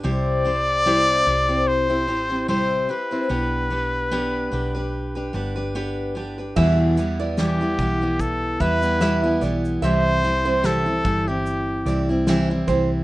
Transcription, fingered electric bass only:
X:1
M:4/4
L:1/8
Q:"Swing 16ths" 1/4=74
K:C
V:1 name="Fingered electric bass" clef=bass
C,,3 C,,2 A,,,2 z | B,,,3 B,,,2 G,,,3 | E,,3 B,,,2 E,,2 B,,, | C,,3 G,,,2 C,,2 C,, |]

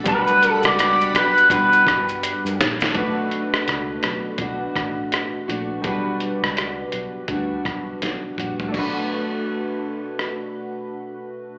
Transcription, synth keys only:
X:1
M:4/4
L:1/8
Q:"Swing 16ths" 1/4=83
K:Bm
V:1 name="Synth keys"
[G,B,DFB]8 | [A,DFB]8 | [G,DFB]8 | [A,DFB]8 |]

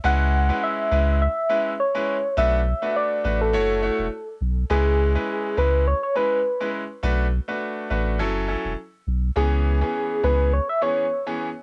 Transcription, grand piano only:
X:1
M:4/4
L:1/16
Q:"Swing 16ths" 1/4=103
K:C#phr
V:1 name="Grand piano"
[G,CEB]3 [G,CEB]3 [G,CEB]2 z2 [G,CEB] z2 [G,CEB] z2 | [A,DFB] z2 [A,DFB]3 [A,DFB]2 [A,EFc]2 [A,EFc] z4 z | [G,CEB]3 [G,CEB]3 [G,CEB]2 z2 [G,CEB] z2 [G,CEB] z2 | [A,DFB] z2 [A,DFB]3 [A,DFB]2 [F,CEA]2 [F,CEA] z4 z |
[E,B,CG]3 [E,B,CG]3 [E,B,CG]2 z2 [E,B,CG] z2 [E,B,CG] z2 |]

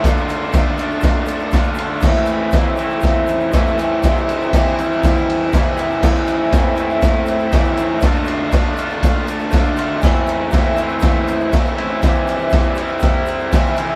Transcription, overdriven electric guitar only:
X:1
M:4/4
L:1/8
Q:1/4=120
K:Am
V:1 name="Overdriven electric guitar"
[D,A,DF]2 [D,A,DF] [A,DF]3 [D,A,DF] [A,DF] | [A,,E,A,CE]2 [E,A,CE] [A,CE]3 [A,,E,A,CE] [A,CE] | [C,E,G,CE]2 [E,G,CE] [G,CE]3 [C,E,G,CE] [G,CE] | [A,,E,A,CE]2 [E,A,CE] [A,CE]3 [A,,E,A,CE] [A,CE] |
[D,A,DF]2 [D,A,DF] [A,DF]3 [D,A,DF] [A,DF] | [A,,E,A,CE]2 [E,A,CE] [A,CE]3 [A,,E,A,CE] [A,CE] | [C,E,G,CE]2 [E,G,CE] [G,CE]3 [C,E,G,CE] [G,CE] |]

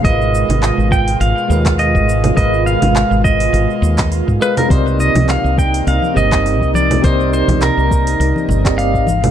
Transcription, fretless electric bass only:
X:1
M:4/4
L:1/16
Q:"Swing 16ths" 1/4=103
K:Cm
V:1 name="Fretless electric bass" clef=bass
A,,,3 A,,, z A,,,3 A,,, z E,,3 A,,,3 | A,,,3 A,,, z A,,,3 A,,, z E,,3 A,, z2 | C,,3 C,, z C,,3 C,, z G,,,3 C,,3 | C,,3 C,, z C,,3 C,, z G,,,3 A,,,3 |]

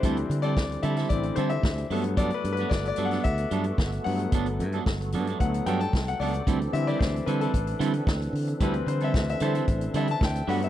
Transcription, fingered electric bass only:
X:1
M:4/4
L:1/8
Q:1/4=112
K:Dmix
V:1 name="Fingered electric bass" clef=bass
D,, D, D,, D, A,,, D, D,, G,,- | G,, G,, G,,, G,, D,, G,, G,,, G,, | G,,, G,, G,,, G,, D,, G,, C,, ^C,, | D,, D, D,, D, A,,, D, D,, D, |
D,, D, D,, D, A,,, D, D,, G,, |]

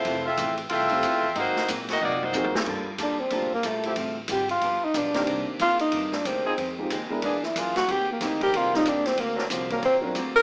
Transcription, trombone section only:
X:1
M:4/4
L:1/8
Q:"Swing" 1/4=184
K:Gm
V:1 name="Trombone section"
z8 | z8 | z6 z [F,C=EG] | z6 z [E,CDB] |
z6 z [F,CE_A] | z4 [=E,^A,D^G] z3 | z3 [G,CEB]3 z2 | z [^F,CD^A] z [F,CDA]3 z2 |]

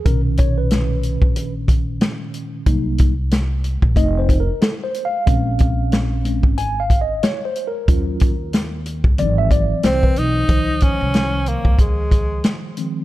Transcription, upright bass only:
X:1
M:4/4
L:1/16
Q:"Swing 16ths" 1/4=92
K:Db
V:1 name="Upright bass" clef=bass
_C,,6- C,, B,,,4- B,,, z4 | C,,6- C,, B,,, F,,,4 z4 | B,,,6- B,,, A,,,4- A,,, z4 | E,,6- E,, D,, A,,,4 C,,2 =B,,,2 |
D,,3 C,,4 D,,4- D,, z4 |]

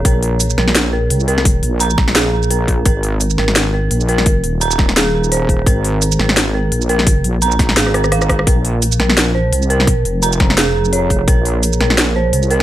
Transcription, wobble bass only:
X:1
M:4/4
L:1/8
Q:"Swing 16ths" 1/4=171
K:Abmix
V:1 name="Wobble bass" clef=bass
B,,,3 B,,,3 C,,2- | C,, B,,,2 B,,,4- B,,, | A,,,3 A,,,3 B,,,2- | B,,, E,,,6 E,,, |
A,,,3 A,,,3 B,,,2- | B,,, B,,,3 A,,,4 | B,,,3 B,,,3 C,,2- | C,, F,,,6 F,,, |
B,,,3 B,,,3 C,,2 |]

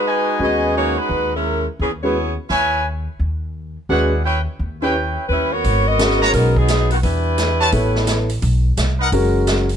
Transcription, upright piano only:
X:1
M:4/4
L:1/8
Q:"Swing" 1/4=172
K:G#m
V:1 name="Upright piano"
z2 [G,CFB]3 z3 | z3 [G,CFB] z4 | z6 [G,CFB] z | z3 [CE=GB] z4 |
z2 [G,CFA]3 z3 | z4 [B,E=Ac]3 z | z4 [G,CFA]3 z |]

